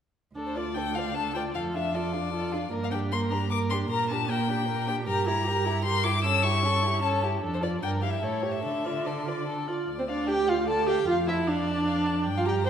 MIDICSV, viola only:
0, 0, Header, 1, 2, 480
1, 0, Start_track
1, 0, Key_signature, -1, "minor"
1, 0, Tempo, 392927
1, 439, Time_signature, 3, 2, 24, 8
1, 9071, Tempo, 409277
1, 11951, Tempo, 396563
1, 15362, End_track
2, 0, Start_track
2, 0, Title_t, "Viola"
2, 0, Program_c, 0, 41
2, 432, Note_on_c, 0, 62, 30
2, 678, Note_on_c, 0, 65, 27
2, 696, Note_off_c, 0, 62, 0
2, 917, Note_on_c, 0, 62, 29
2, 936, Note_off_c, 0, 65, 0
2, 1153, Note_on_c, 0, 65, 27
2, 1172, Note_off_c, 0, 62, 0
2, 1376, Note_off_c, 0, 65, 0
2, 1383, Note_on_c, 0, 62, 26
2, 1637, Note_on_c, 0, 65, 30
2, 1655, Note_off_c, 0, 62, 0
2, 1883, Note_off_c, 0, 65, 0
2, 1890, Note_on_c, 0, 65, 32
2, 2137, Note_on_c, 0, 62, 28
2, 2156, Note_off_c, 0, 65, 0
2, 2375, Note_on_c, 0, 65, 28
2, 2393, Note_off_c, 0, 62, 0
2, 2612, Note_on_c, 0, 62, 31
2, 2630, Note_off_c, 0, 65, 0
2, 2843, Note_off_c, 0, 62, 0
2, 2850, Note_on_c, 0, 65, 29
2, 3100, Note_on_c, 0, 62, 33
2, 3118, Note_off_c, 0, 65, 0
2, 3318, Note_off_c, 0, 62, 0
2, 3325, Note_on_c, 0, 58, 37
2, 3557, Note_on_c, 0, 62, 31
2, 3575, Note_off_c, 0, 58, 0
2, 3816, Note_on_c, 0, 58, 36
2, 3834, Note_off_c, 0, 62, 0
2, 4037, Note_on_c, 0, 62, 33
2, 4056, Note_off_c, 0, 58, 0
2, 4270, Note_off_c, 0, 62, 0
2, 4278, Note_on_c, 0, 58, 32
2, 4518, Note_on_c, 0, 62, 36
2, 4537, Note_off_c, 0, 58, 0
2, 4755, Note_off_c, 0, 62, 0
2, 4762, Note_on_c, 0, 58, 42
2, 5020, Note_on_c, 0, 62, 37
2, 5039, Note_off_c, 0, 58, 0
2, 5237, Note_on_c, 0, 58, 39
2, 5255, Note_off_c, 0, 62, 0
2, 5473, Note_on_c, 0, 62, 37
2, 5491, Note_off_c, 0, 58, 0
2, 5706, Note_off_c, 0, 62, 0
2, 5713, Note_on_c, 0, 58, 35
2, 5951, Note_on_c, 0, 62, 40
2, 5969, Note_off_c, 0, 58, 0
2, 6162, Note_off_c, 0, 62, 0
2, 6169, Note_on_c, 0, 67, 45
2, 6425, Note_on_c, 0, 64, 39
2, 6444, Note_off_c, 0, 67, 0
2, 6655, Note_on_c, 0, 67, 41
2, 6674, Note_off_c, 0, 64, 0
2, 6903, Note_on_c, 0, 64, 37
2, 6922, Note_off_c, 0, 67, 0
2, 7142, Note_off_c, 0, 64, 0
2, 7148, Note_on_c, 0, 67, 34
2, 7382, Note_on_c, 0, 64, 39
2, 7400, Note_off_c, 0, 67, 0
2, 7623, Note_off_c, 0, 64, 0
2, 7633, Note_on_c, 0, 61, 42
2, 7859, Note_on_c, 0, 64, 37
2, 7877, Note_off_c, 0, 61, 0
2, 8089, Note_on_c, 0, 61, 34
2, 8107, Note_off_c, 0, 64, 0
2, 8335, Note_on_c, 0, 64, 38
2, 8353, Note_off_c, 0, 61, 0
2, 8567, Note_off_c, 0, 64, 0
2, 8574, Note_on_c, 0, 61, 32
2, 8829, Note_on_c, 0, 64, 34
2, 8847, Note_off_c, 0, 61, 0
2, 9056, Note_off_c, 0, 64, 0
2, 9063, Note_on_c, 0, 62, 38
2, 9288, Note_on_c, 0, 65, 33
2, 9306, Note_off_c, 0, 62, 0
2, 9524, Note_off_c, 0, 65, 0
2, 9531, Note_on_c, 0, 62, 29
2, 9774, Note_on_c, 0, 64, 32
2, 9792, Note_off_c, 0, 62, 0
2, 9999, Note_off_c, 0, 64, 0
2, 10006, Note_on_c, 0, 64, 26
2, 10241, Note_on_c, 0, 67, 26
2, 10259, Note_off_c, 0, 64, 0
2, 10484, Note_off_c, 0, 67, 0
2, 10491, Note_on_c, 0, 62, 28
2, 10743, Note_on_c, 0, 65, 25
2, 10760, Note_off_c, 0, 62, 0
2, 10981, Note_on_c, 0, 62, 24
2, 10999, Note_off_c, 0, 65, 0
2, 11215, Note_on_c, 0, 65, 26
2, 11232, Note_off_c, 0, 62, 0
2, 11462, Note_off_c, 0, 65, 0
2, 11469, Note_on_c, 0, 62, 23
2, 11706, Note_on_c, 0, 65, 28
2, 11723, Note_off_c, 0, 62, 0
2, 11948, Note_off_c, 0, 65, 0
2, 12082, Note_on_c, 0, 60, 47
2, 12129, Note_off_c, 0, 60, 0
2, 12205, Note_on_c, 0, 62, 47
2, 12435, Note_on_c, 0, 67, 58
2, 12453, Note_off_c, 0, 62, 0
2, 12689, Note_on_c, 0, 65, 48
2, 12707, Note_off_c, 0, 67, 0
2, 12912, Note_off_c, 0, 65, 0
2, 12919, Note_on_c, 0, 69, 49
2, 13142, Note_on_c, 0, 67, 57
2, 13160, Note_off_c, 0, 69, 0
2, 13381, Note_off_c, 0, 67, 0
2, 13388, Note_on_c, 0, 65, 61
2, 13485, Note_off_c, 0, 65, 0
2, 13631, Note_on_c, 0, 64, 55
2, 13876, Note_on_c, 0, 62, 57
2, 13894, Note_off_c, 0, 64, 0
2, 14837, Note_off_c, 0, 62, 0
2, 14964, Note_on_c, 0, 65, 50
2, 15075, Note_on_c, 0, 67, 50
2, 15093, Note_off_c, 0, 65, 0
2, 15295, Note_off_c, 0, 67, 0
2, 15302, Note_on_c, 0, 72, 68
2, 15362, Note_off_c, 0, 72, 0
2, 15362, End_track
0, 0, End_of_file